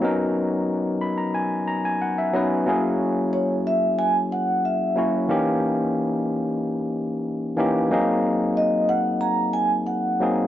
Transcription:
X:1
M:4/4
L:1/16
Q:1/4=91
K:D#phr
V:1 name="Vibraphone"
z16 | z4 c2 e2 g2 f2 e3 z | z16 | z4 d2 f2 a2 g2 f3 z |]
V:2 name="Tine electric piano"
[F,B,CDA]6 b a g2 a g f e [F,B,CDBd]2 | [F,A,CEG]6 z8 [F,A,CEF]2 | [E,A,CD=G]6 z8 [E,A,CDG]2 | [F,A,^B,DG]6 z8 [F,A,B,DG]2 |]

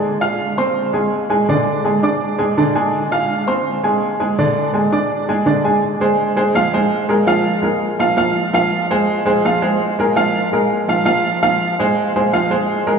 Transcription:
X:1
M:4/4
L:1/8
Q:1/4=166
K:Fdor
V:1 name="Upright piano"
[A,Aa] [Fff']2 [Ccc']2 [A,Aa]2 [A,Aa] | [D,Dd]2 [A,Aa] [Ddd']2 [A,Aa] [D,Dd] [A,Aa]- | [A,Aa] [Fff']2 [Ccc']2 [A,Aa]2 [A,Aa] | [D,Dd]2 [A,Aa] [Ddd']2 [A,Aa] [D,Dd] [A,Aa] |
z [A,Ac]2 [A,Ac] [F,Ff] [A,Ac]2 [A,AB] | [F,Ff]2 [A,AB]2 [F,Ff] [F,Ff]2 [F,Ff]- | [F,Ff] [A,Ac]2 [A,Ac] [F,Ff] [A,Ac]2 [A,AB] | [F,Ff]2 [A,AB]2 [F,Ff] [F,Ff]2 [F,Ff]- |
[F,Ff] [A,Ac]2 [A,Ac] [F,Ff] [A,Ac]2 [A,AB] |]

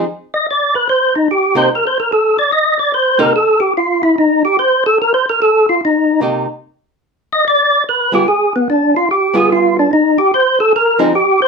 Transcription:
X:1
M:4/4
L:1/8
Q:"Swing" 1/4=146
K:Gm
V:1 name="Tonewheel organ"
z e d =B c E G c | (3B c B A d e d c B | A G F =E _E G c A | (3B c B A F E2 z2 |
z3 e d2 =B G | _A =B, D F G A F D | E G c A B E G c |]
V:2 name="Hollow-body jazz guitar"
z6 z [C,B,EG] | z6 z [C,B,EG] | z8 | z6 [C,B,EG] z |
z6 z [G,=B,F_A] | z4 z [G,=B,F_A]3 | z4 z [F,CE_A] z2 |]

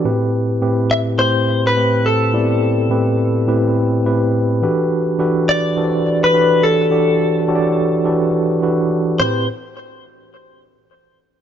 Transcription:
X:1
M:4/4
L:1/16
Q:"Swing 16ths" 1/4=105
K:Em
V:1 name="Clean electric guitar"
z6 e2 c3 B3 A2- | A8- A2 z6 | z6 d4- d B3 A2- | A12 z4 |
c2 z12 z2 |]
V:2 name="Tine electric piano"
[A,,CEGB]4 [A,,CEGB]4 [A,,CEGc]4 [A,,CEGB]4 | [A,,B,CEGd]4 [A,,CEGB]4 [A,,CEGB]4 [A,,CEGB]4 | [E,DFGAB]4 [E,DFGAB]4 [E,DFGAcd]4 [E,DFGA^cd]4 | [E,DFGAd]4 [E,DFGA^cd]4 [E,DFGAB]4 [E,DFGAB]4 |
[A,,CEGB]2 z12 z2 |]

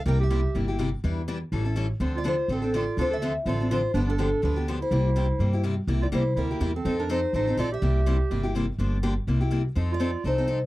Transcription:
X:1
M:4/4
L:1/8
Q:"Swing" 1/4=248
K:Cmix
V:1 name="Steel-string acoustic guitar"
g e4 z3 | z8 | z d c2 A2 d2 | c e2 z d2 c2 |
=B A3 B2 z c- | c6 z2 | z d c2 B3 A- | A B c2 c2 d e- |
e6- e z | z8 | z d3 c3 z |]
V:2 name="Clarinet"
B G4 z3 | z8 | z F F2 C2 F2 | F A2 z F2 F2 |
D D3 D2 z E- | E6 z2 | z F E2 E3 C- | C D _E2 E2 F G- |
G6- G z | z8 | z F3 _E3 z |]
V:3 name="Steel-string acoustic guitar"
[C,G,B,EG] z [C,G,B,EG] z [C,G,B,EG] [B,EG] [C,G,B,EG] z | [E,G,DE=B] z [E,G,DEB] z [E,G,^CEA] [CEA] [E,G,CEA] z | [D,F,CDA] z [D,F,CDA] z [D,F,CDA] [CDA] [D,F,CDA] z | [D,F,CDA] z [D,F,CDA] z [D,F,CDA] [CDA] [D,F,CDA] z |
[D,F,=B,DG] z [D,F,B,DG] z [D,F,B,DG] [B,DG] [D,F,B,DG] z | [C,G,B,EG] z [C,G,B,EG] z [C,G,B,EG] [B,EG] [C,G,B,EG] z | [C,G,B,EG] z [C,G,B,EG] z [C,G,B,EG] [B,EG] [C,G,B,EG] z | [F,C_EA] z [F,CEA] z [F,CEA] [CEA] [F,CEA] z |
[C,G,B,EG] z [C,G,B,EG] z [C,G,B,EG] [B,EG] [C,G,B,EG] z | [D,F,B,DG] z [D,F,B,DG] z [C,G,B,EG] [B,EG] [C,G,B,EG] z | [F,C_EA] z [F,CEA] z [F,CEA] [CEA] [F,CEA] z |]
V:4 name="Upright bass" clef=bass
C,,4 G,,,4 | E,,4 A,,,4 | D,,4 A,,,4 | D,,4 A,,,4 |
G,,,4 D,,4 | C,,4 G,,4 | C,,2 C,,2 D,,2 E,,2 | F,,4 A,,,2 B,,,2 |
C,,4 G,,,4 | G,,,4 C,,4 | F,,4 C,,4 |]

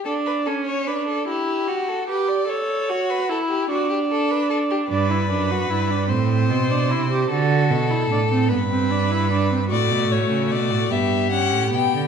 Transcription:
X:1
M:6/8
L:1/16
Q:3/8=50
K:Dmix
V:1 name="Violin"
z12 | z12 | z12 | z12 |
d2 ^c2 d2 e2 f2 g2 |]
V:2 name="Violin"
A B A ^c B A G3 A B d | ^c3 B A G F G A B A G | B6 c6 | A6 B6 |
F6 G6 |]
V:3 name="Viola"
D2 ^C2 D2 E2 F2 G2 | A2 F2 E2 D6 | D E D F E D C3 D E G | F3 E D C B, C D E D C |
A,6 B,2 ^C2 B,2 |]
V:4 name="Cello" clef=bass
z12 | z12 | G,,2 F,,2 G,,2 A,,2 B,,2 C,2 | D,2 B,,2 A,,2 G,,6 |
A,, B,, A,, ^C, B,, A,, G,,3 A,, B,, D, |]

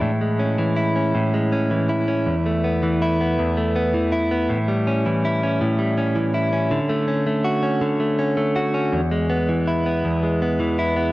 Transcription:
X:1
M:6/8
L:1/16
Q:3/8=54
K:A
V:1 name="Clean electric guitar"
A,, G, C E, E C A,, G, C E, E C | E,, A, B, E, E B, E,, A, B, E, E B, | A,, =G, C E, E C A,, G, C E, E C | D, A, C A, F C D, A, C A, F C |
E,, G, B, E, E B, E,, G, B, E, E B, |]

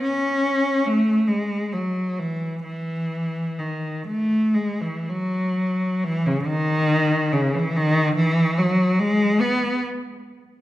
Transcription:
X:1
M:3/4
L:1/16
Q:1/4=70
K:F#dor
V:1 name="Cello" clef=bass
C4 A,2 G,2 F,2 E,2 | E,4 D,2 A,2 G, E, F,2- | F,2 E, C, D,4 C, E, D,2 | E,2 F,2 G,2 B,2 z4 |]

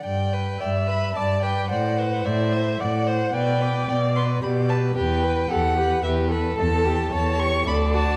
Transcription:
X:1
M:3/4
L:1/8
Q:1/4=110
K:G
V:1 name="Violin"
g2 g b a g | f2 e2 f2 | g2 g c' b a | g2 f2 e z |
a2 a ^c' b a |]
V:2 name="Viola"
z2 e2 d2 | c B c2 d c | B d3 G2 | B2 A G B A- |
A2 ^c2 d2 |]
V:3 name="Violin"
d B d B d B | d c d c d c | d B d B d B | G B G B G B |
A G A G A F |]
V:4 name="Cello" clef=bass
G,,2 G,,2 G,,2 | A,,2 A,,2 A,,2 | B,,2 B,,2 B,,2 | E,,2 E,,2 E,,2 |
E,,2 E,,2 D,,2 |]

